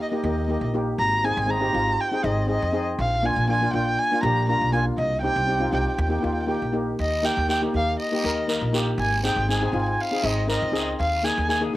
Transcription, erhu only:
0.02 0.08 D#5 medium
0.10 0.15 D#5 medium
0.17 0.22 D#5 medium
0.24 0.30 D#5 soft
0.31 0.37 D#5 medium
0.38 0.44 D#5 soft
0.45 0.51 D#5 medium
0.53 0.59 D#5 soft
0.61 0.67 D#5 medium
0.99 1.26 A#5 loud
1.24 1.51 G#5 loud
1.50 2.02 A#5 loud
2.00 2.26 G5 loud
2.25 2.49 D#5 medium
2.50 2.85 D#5 medium
3.00 3.27 F5 loud
3.25 3.49 G#5 loud
3.50 3.73 G#5 loud
3.73 4.00 G5 loud
3.99 4.23 G#5 loud
4.23 4.47 A#5 loud
4.49 4.72 A#5 loud
4.73 4.84 G#5 medium
4.98 5.21 D#5 medium
5.21 5.69 G5 loud
5.73 5.80 G5 medium
5.81 5.87 G5 medium
5.88 5.94 G5 medium
5.95 6.01 G5 medium
6.01 6.10 G5 medium
6.11 6.18 G5 medium
6.19 6.25 G5 medium
6.26 6.33 G5 soft
6.33 6.41 G5 medium
6.41 6.47 G5 medium
6.47 6.55 G5 medium
6.56 6.63 G5 medium
7.00 7.26 D#5 loud
7.25 7.49 G5 loud
7.49 7.61 G5 loud
7.76 7.99 F5 loud
8.00 8.71 D#5 medium
9.00 9.23 G#5 medium
9.26 9.49 G5 medium
9.50 9.57 G#5 medium
9.58 9.65 G#5 medium
9.66 9.72 G#5 medium
9.73 9.80 G#5 medium
9.81 9.87 G#5 medium
9.89 10.02 G#5 medium
10.01 10.27 F5 loud
10.26 10.49 D#5 medium
10.50 10.85 D#5 medium
11.00 11.26 F5 loud
11.25 11.49 G#5 loud
11.50 11.61 G#5 loud

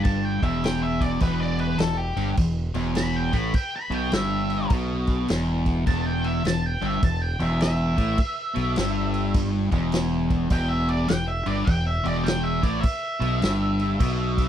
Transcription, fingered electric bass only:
0.00 0.39 G1 medium
0.42 1.18 E1 medium
1.22 1.76 E1 medium
1.79 2.14 E1 medium
2.16 2.36 G1 medium
2.38 2.73 E1 medium
2.75 3.29 E1 medium
3.34 3.53 A1 medium
3.55 muted fingered electric bass stroke soft
3.90 4.10 B1 loud
4.12 4.66 G1 medium
4.71 5.25 B1 loud
5.31 5.84 E1 medium
5.87 6.41 E1 medium
6.46 6.80 E1 medium
6.82 7.01 G1 medium
7.03 7.38 E1 medium
7.41 7.95 E1 medium
7.98 8.18 A1 medium
8.19 muted fingered electric bass stroke soft
8.57 8.76 B1 medium
8.77 9.69 G1 medium
9.72 10.47 E1 loud
10.51 11.05 E1 loud
11.11 11.45 E1 medium
11.46 11.66 G1 medium
11.68 12.03 E1 medium
12.05 12.59 E1 medium
12.63 12.83 A1 medium
12.84 muted fingered electric bass stroke soft
13.21 13.41 B1 medium
13.43 13.97 G1 loud
14.00 14.48 B1 loud

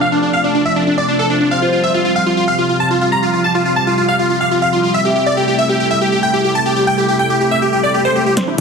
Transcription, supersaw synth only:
0.01 0.08 F5 medium
0.12 0.19 D4 medium
0.23 0.29 D4 medium
0.33 0.40 F5 medium
0.44 0.51 D4 medium
0.55 0.61 D4 medium
0.65 0.72 E5 loud
0.76 0.83 D4 medium
0.87 0.94 D4 medium
0.98 1.04 D5 medium
1.08 1.15 D4 medium
1.19 1.26 A4 medium
1.30 1.37 D4 medium
1.41 1.47 D4 medium
1.51 1.58 F5 loud
1.62 1.69 F4 medium
1.73 1.79 F4 medium
1.83 1.90 E5 medium
1.94 2.01 F4 medium
2.05 2.12 F4 medium
2.16 2.22 F5 medium
2.26 2.33 F4 medium
2.37 2.44 F4 medium
2.48 2.54 F5 medium
2.58 2.65 F4 medium
2.69 2.76 F4 medium
2.80 2.87 A5 medium
2.91 2.97 F4 medium
3.01 3.08 F4 medium
3.12 3.19 A#5 medium
3.23 3.29 F4 medium
3.33 3.40 F4 medium
3.44 3.51 A5 medium
3.55 3.62 F4 medium
3.66 3.72 F4 medium
3.76 3.83 A5 medium
3.87 3.94 F4 medium
3.98 4.04 F4 medium
4.08 4.15 F5 loud
4.19 4.26 F4 medium
4.30 4.37 F4 medium
4.41 4.47 F5 medium
4.51 4.58 F4 medium
4.62 4.69 F5 medium
4.73 4.79 F4 medium
4.83 4.90 F4 medium
4.94 5.01 E5 loud
5.05 5.12 G4 medium
5.16 5.22 G4 medium
5.26 5.33 D5 medium
5.37 5.44 G4 medium
5.48 5.54 G4 medium
5.59 5.65 E5 medium
5.69 5.76 G4 medium
5.80 5.87 G4 medium
5.91 5.97 E5 medium
6.01 6.08 G4 medium
6.12 6.19 G4 medium
6.23 6.29 G5 medium
6.34 6.40 G4 medium
6.44 6.51 G4 medium
6.55 6.62 A5 medium
6.66 6.72 G4 medium
6.76 6.83 G4 medium
6.87 6.94 G5 medium
6.98 7.04 G4 medium
7.08 7.15 G4 medium
7.19 7.26 G5 medium
7.30 7.37 G4 medium
7.41 7.47 G4 medium
7.51 7.58 E5 loud
7.62 7.69 G4 medium
7.73 7.79 G4 medium
7.83 7.90 D5 medium
7.94 8.01 G4 medium
8.05 8.12 C5 medium
8.16 8.22 G4 medium
8.26 8.33 G4 medium
8.37 8.44 C4 medium
8.37 8.44 C5 loud
8.48 8.54 E4 medium

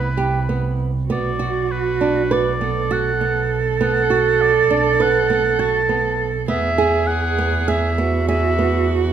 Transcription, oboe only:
0.00 0.78 B4 medium
1.12 1.73 D5 medium
1.71 2.34 B4 medium
2.32 2.94 D5 medium
2.92 3.59 F#5 medium
3.81 4.43 F#5 medium
4.41 5.03 D5 medium
5.02 5.61 F#5 medium
5.60 6.27 A5 loud
6.49 7.09 E5 loud
7.07 7.70 F#5 loud
7.68 8.28 E5 medium
8.28 8.92 E5 loud

